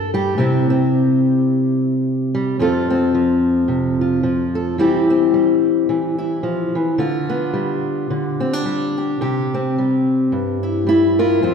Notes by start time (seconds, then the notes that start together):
Already playing: G2 A#3 A4
0.14 G3 G4
0.38 C3 G3 C4 E4
0.70 C4
2.35 G3
2.59 F2 F3 C4 F4 A4
2.90 C4
3.15 F3
3.68 C3
4.01 F4
4.23 F3
4.55 A4
4.78 E3 G3 C4 E4 G4
5.10 C4
5.34 G3
5.89 E3
6.18 E4
6.43 F3
6.75 E3
6.98 D3 F4
7.30 B3
7.54 G3
8.10 D3
8.40 C4
8.53 D4
8.65 G3
8.98 G4
9.21 C3 G4
9.54 C4
9.78 G3
10.32 G2
10.63 E4
10.87 G3 E4
11.19 F4 A#4
11.42 F2 F3 C4